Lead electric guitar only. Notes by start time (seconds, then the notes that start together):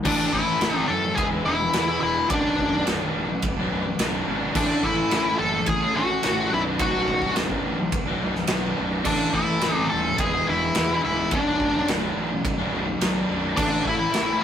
0.06 D4 D5
0.32 E4 E5
0.77 D5
0.88 A4 A5
1.15 G#4 G#5
1.46 E4 E5
2.00 E4 E5
2.30 D4 D5
4.56 D4 D5
4.84 E4 E5
5.39 A4 A5
5.67 G#4 G#5
5.96 F#4 F#5
6.53 E4 E5
6.80 F#4 F#5
9.05 D4 D5
9.34 E4 E5
9.76 D5
9.89 A4 A5
10.19 G#4 G#5
10.49 E4 E5
11.05 E4 E5
11.34 D4 D5
13.57 D4 D5
13.88 E4 E5